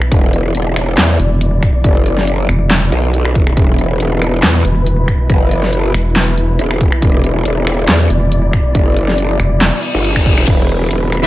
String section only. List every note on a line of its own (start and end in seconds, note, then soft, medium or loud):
0.00 11.27 B2 medium
0.00 11.27 E3 medium
0.00 11.27 E4 medium
0.00 0.10 B4 medium
0.12 3.56 D5 medium
3.57 7.01 B4 medium
7.02 10.46 D5 medium
10.48 11.27 B4 medium